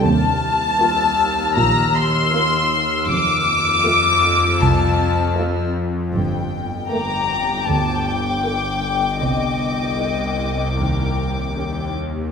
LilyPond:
<<
  \new Staff \with { instrumentName = "Violin section" } { \time 4/4 \key ees \lydian \tempo 4 = 78 << { r4 e'''2.~ | e'''2.~ e'''8 r8 | r4 d'''2.~ | d'''2.~ d'''8 r8 | } \\ { f'''1~ | f'''2.~ f'''8 r8 | g''1~ | g''2.~ g''8 r8 | } >> }
  \new Staff \with { instrumentName = "Violin section" } { \time 4/4 \key ees \lydian a''2 bes''8 c'''4. | d'''2 a''4 r4 | r4 bes''4 a''8 g''4. | ees''2 bes'4 r4 | }
  \new Staff \with { instrumentName = "Viola section" } { \time 4/4 \key ees \lydian r4 <bes f'>4 r4 <bes f'>4 | r4 <a f'>4 r4 <a f'>4 | r4 <a bes>4 r4 <bes a'>4 | r4 <d g'>4 r4 <des' g'>4 | }
  \new Staff \with { instrumentName = "Cello section" } { \clef bass \time 4/4 \key ees \lydian ees,4 r4 bes,4 r4 | f,4 r4 c,4 r4 | g,4 r4 d,4 r4 | c4 r4 ees4 r4 | }
  \new Staff \with { instrumentName = "Synth drone" } { \clef bass \time 4/4 \key ees \lydian ees,1 | f,1 | g,,1 | c,2 ees,2 | }
  \new Staff \with { instrumentName = "Double bass section" } { \clef bass \time 4/4 \key ees \lydian ees,4 r4 bes,,4 r4 | f,,4 r4 c,4 r4 | g,,4 r4 d,4 r4 | c,4 r4 ees,4 r4 | }
>>